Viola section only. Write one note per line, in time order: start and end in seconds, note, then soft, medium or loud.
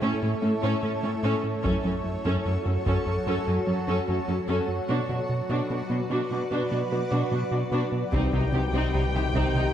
0.02 0.21 C#4 medium
0.02 0.21 A4 medium
0.23 0.31 C#4 soft
0.23 0.31 A4 soft
0.43 0.51 C#4 soft
0.43 0.51 A4 soft
0.63 0.82 C#4 medium
0.63 0.82 A4 medium
0.83 0.91 C#4 soft
0.83 0.91 A4 soft
1.03 1.12 C#4 soft
1.03 1.11 A4 soft
1.24 1.43 C#4 medium
1.24 1.43 A4 medium
1.64 1.83 C#4 soft
1.64 1.83 A4 soft
1.85 1.93 C#4 soft
1.85 1.93 A4 soft
2.25 2.44 C#4 medium
2.25 2.44 A4 soft
2.45 2.53 C#4 soft
2.45 2.53 A4 soft
2.65 2.73 C#4 soft
2.65 2.73 A4 soft
2.86 3.05 C#4 soft
2.86 3.05 A4 soft
3.06 3.14 C#4 soft
3.06 3.14 A4 soft
3.27 3.46 C#4 soft
3.27 3.46 A4 medium
3.47 3.55 C#4 soft
3.47 3.55 A4 soft
3.68 3.76 C#4 soft
3.68 3.76 A4 soft
3.88 4.07 C#4 soft
3.88 4.07 A4 soft
4.08 4.16 C#4 soft
4.08 4.16 A4 soft
4.29 4.37 C#4 soft
4.29 4.37 A4 soft
4.48 4.67 C#4 soft
4.48 4.67 A4 soft
4.89 5.08 D4 soft
4.89 5.08 F#4 soft
5.09 5.17 D4 soft
5.09 5.17 F#4 soft
5.50 5.69 D4 soft
5.50 5.69 F#4 soft
5.70 5.78 D4 soft
5.70 5.78 F#4 soft
5.91 5.99 D4 soft
5.91 5.99 F#4 soft
6.11 6.30 D4 soft
6.11 6.30 F#4 soft
6.32 6.40 D4 soft
6.32 6.40 F#4 soft
6.51 6.70 D4 soft
6.51 6.69 F#4 soft
6.71 6.79 D4 soft
6.71 6.79 F#4 soft
6.91 6.99 D4 soft
6.91 6.99 F#4 soft
7.11 7.30 D4 soft
7.11 7.30 F#4 soft
7.31 7.39 D4 soft
7.31 7.39 F#4 soft
7.52 7.60 D4 soft
7.52 7.60 F#4 soft
7.72 7.91 D4 soft
7.72 7.91 F#4 soft
8.13 8.32 D#4 soft
8.34 8.42 D#4 soft
8.55 8.62 D#4 soft
8.75 8.93 D#4 soft
8.95 9.03 D#4 soft
9.16 9.23 D#4 soft
9.35 9.54 D#4 soft
9.56 9.64 D#4 soft